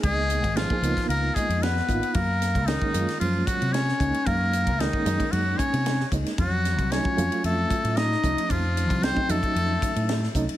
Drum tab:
RD |x-xxx-xxx-xxx-xx|x-xxx-xxx-xxx-xx|x-xxx-xxx-xxx-xx|x-xxx-xxx-xxx-xx|
HH |--p---p---p---p-|--p---p---p---p-|--p---p---p---p-|--p---p---p---p-|
SD |----o--o----oo--|--o-o--o----oo--|----o-------oo-o|--o-o-------oo--|
BD |o--o-o-o--o---o-|o--o-o----o---o-|o--o-o-o--o---o-|o--o-o----o---o-|

RD |x-xxx-xxx-xxx-xx|
HH |--p---p---p---p-|
SD |----o-------oo--|
BD |o--o-o-o--o---o-|